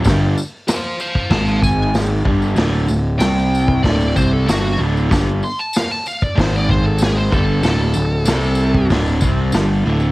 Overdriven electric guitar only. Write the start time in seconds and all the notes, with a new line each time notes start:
0.03 G2 D3 G3
1.30 G#2 D#3 G#3
2.25 G2 D3 G3
2.55 D2 A2 D3
2.87 D2 A2
3.19 C3 G3 C4
3.83 D2 A2 D3
4.14 C3 G3 C4
4.45 G2 D3 G3
4.77 D2 A2 D3
5.09 G2 D3 G3
6.35 G#2 D#3 G#3
7.31 G2 D3 G3
7.62 D2 A2 D3
7.94 D2 A2
8.25 C3 G3 C4
8.89 D2 A2 D3
9.21 C3 G3 C4
9.53 G2 D3 G3
9.85 D2 A2 D3